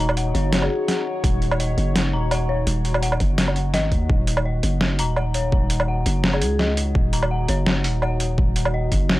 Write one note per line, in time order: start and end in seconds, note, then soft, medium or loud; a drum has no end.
0.00 0.34 D#1 loud
0.00 4.06 D#4 medium
0.00 4.06 F#4 medium
0.00 4.07 C#5 medium
0.00 1.60 D#5 medium
0.00 4.11 F5 medium
0.00 0.17 F#5 medium
0.00 0.16 A#5 loud
0.09 low woodblock medium
0.17 0.28 F#5 medium
0.17 closed hi-hat medium
0.34 0.69 F#1 loud
0.34 0.52 C#5 medium
0.34 closed hi-hat soft
0.53 snare loud
0.53 closed hi-hat medium
0.62 0.98 G#4 medium
0.62 low woodblock medium
0.88 0.99 F#5 medium
0.88 snare medium
0.88 closed hi-hat medium
1.24 1.76 D#1 loud
1.24 kick loud
1.24 closed hi-hat medium
1.42 closed hi-hat soft
1.51 low woodblock medium
1.60 1.70 D#5 medium
1.60 closed hi-hat medium
1.78 2.15 F#1 loud
1.78 closed hi-hat soft
1.96 snare loud
1.96 closed hi-hat medium
2.13 2.66 D#1 loud
2.13 2.30 A#5 loud
2.31 2.42 F#5 medium
2.31 closed hi-hat medium
2.31 low woodblock medium
2.49 2.66 C#5 medium
2.67 3.19 D#1 loud
2.67 closed hi-hat medium
2.85 closed hi-hat soft
2.94 low woodblock medium
3.03 3.13 F#5 medium
3.03 closed hi-hat medium
3.12 low woodblock medium
3.20 3.75 F#1 medium
3.20 kick medium
3.20 closed hi-hat soft
3.38 snare loud
3.38 closed hi-hat medium
3.48 low woodblock medium
3.56 closed hi-hat soft
3.74 3.93 G#1 loud
3.74 3.85 D#5 loud
3.74 snare medium
3.74 closed hi-hat medium
3.92 4.08 D#2 loud
3.92 kick medium
3.92 closed hi-hat soft
4.10 4.62 D#1 loud
4.10 9.20 D#4 medium
4.10 9.20 F#4 medium
4.10 kick loud
4.27 closed hi-hat medium
4.37 low woodblock medium
4.45 4.56 D#5 medium
4.63 5.00 F#1 loud
4.63 closed hi-hat medium
4.81 snare loud
4.99 5.51 D#1 loud
4.99 5.16 A#5 loud
4.99 closed hi-hat medium
5.16 5.28 F#5 medium
5.16 low woodblock medium
5.34 5.52 C#5 medium
5.34 closed hi-hat medium
5.52 6.05 D#1 loud
5.52 kick loud
5.70 closed hi-hat medium
5.80 low woodblock medium
5.88 5.99 F#5 medium
6.06 6.43 F#1 loud
6.06 closed hi-hat medium
6.24 snare loud
6.33 6.69 G#4 medium
6.33 low woodblock medium
6.42 6.94 C#2 medium
6.42 closed hi-hat medium
6.59 6.70 D#5 medium
6.59 snare medium
6.77 closed hi-hat medium
6.95 7.48 D#1 loud
6.95 kick loud
7.13 7.30 A#5 loud
7.13 closed hi-hat medium
7.23 low woodblock medium
7.31 7.42 F#5 medium
7.49 7.86 F#1 medium
7.49 7.66 C#5 medium
7.49 closed hi-hat medium
7.67 snare loud
7.84 8.37 D#1 loud
7.84 closed hi-hat medium
8.02 8.13 F#5 medium
8.02 low woodblock medium
8.20 closed hi-hat medium
8.38 8.91 D#1 loud
8.38 kick loud
8.56 closed hi-hat medium
8.65 low woodblock medium
8.74 8.85 D#5 medium
8.92 9.20 F#1 loud
8.92 kick medium
8.92 closed hi-hat medium
9.09 snare loud